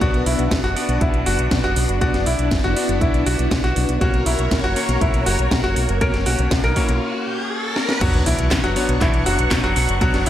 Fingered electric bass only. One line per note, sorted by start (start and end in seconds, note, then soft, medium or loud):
0.01 0.11 B1 medium
0.14 0.23 B1 medium
0.26 0.36 B1 medium
0.39 0.48 B1 medium
0.51 0.61 B1 medium
0.63 0.73 F#1 medium
0.89 0.98 B1 medium
1.01 1.11 B1 loud
1.14 1.23 B1 medium
1.26 1.35 F#1 medium
1.39 1.48 B1 medium
1.51 1.61 B1 medium
1.64 1.73 F#1 medium
1.76 1.86 B1 loud
1.89 1.98 F#1 medium
2.01 2.11 B1 medium
2.14 2.23 F#1 medium
2.26 2.36 B1 medium
2.39 2.48 B1 medium
2.51 2.61 F#1 medium
2.64 2.73 F#1 medium
2.89 2.98 F#1 medium
3.01 3.11 B1 loud
3.14 3.23 B1 medium
3.26 3.36 B1 medium
3.39 3.48 B1 medium
3.51 3.61 B1 medium
3.64 3.73 B1 medium
3.76 3.86 B1 medium
3.89 3.98 B1 medium
4.01 4.11 B1 loud
4.14 4.23 B1 medium
4.26 4.36 B1 medium
4.39 4.48 B1 medium
4.51 4.61 B1 loud
4.64 4.73 F#1 medium
4.89 4.98 B1 medium
5.01 5.11 B1 loud
5.14 5.23 B1 medium
5.26 5.36 F#1 medium
5.39 5.48 B1 medium
5.51 5.61 B1 loud
5.64 5.73 F#1 medium
5.76 5.86 B1 medium
5.89 5.98 F#1 medium
6.01 6.11 B1 loud
6.14 6.23 F#1 medium
6.27 6.36 B1 medium
6.39 6.48 B1 medium
6.51 6.61 B1 loud
6.64 6.73 B1 medium
6.89 6.98 B1 medium
8.01 8.11 B1 loud
8.14 8.23 B1 medium
8.26 8.36 B1 medium
8.39 8.48 B1 medium
8.51 8.61 B1 loud
8.64 8.73 F#1 medium
8.89 8.98 B1 medium
9.01 9.11 B1 loud
9.14 9.23 B1 medium
9.26 9.36 F#1 medium
9.39 9.48 B1 medium
9.51 9.61 B1 loud
9.64 9.73 F#1 medium
9.76 9.86 B1 loud
9.89 9.98 F#1 medium
10.01 10.11 B1 loud
10.14 10.23 F#1 medium
10.26 10.29 B1 medium